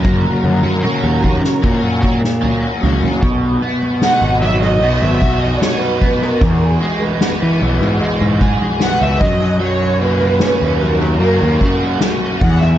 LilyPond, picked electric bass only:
\new Staff \with { instrumentName = "Picked electric bass" } { \clef bass \time 4/4 \key fis \mixolydian \tempo 4 = 75 fis,16 r16 fis,16 fis,16 r16 dis,8 r16 ais,4. cis,16 r16 | b,,8 r8. gis,,8. b,,16 gis,,16 b,,8 r4 | e,8 r8. e16 b,,16 gis,16 r16 gis,8 r8 cis,16 fis,8~ | fis,4~ fis,16 dis,8. fis,16 dis,16 fis,8 r8 e,8 | }